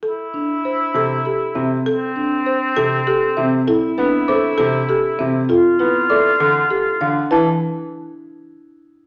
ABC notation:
X:1
M:6/4
L:1/8
Q:1/4=198
K:C
V:1 name="Celesta"
z12 | z12 | z4 d' z6 z | z4 d' z6 z |
a z8 z3 |]
V:2 name="Marimba"
A z3 c z A z G z e z | A z3 c z A z G z e z | A z B z c z A z G z e z | A z B z d z A z G z f z |
B z8 z3 |]
V:3 name="Marimba"
z2 D z4 z A z C z | z2 D z4 z A z C z | E z D z A z3 A z C z | F z E z A z3 A z D z |
E z8 z3 |]
V:4 name="Oboe"
E8- E3 z | C8- C3 z | E8- E3 z | F8- F3 z |
z12 |]
V:5 name="Grand piano" clef=bass
z6 C, z3 C, z | z6 C, z3 C, z | z2 B, z A, z C, z3 C, z | z2 B, z A, z D, z3 D, z |
E, z8 z3 |]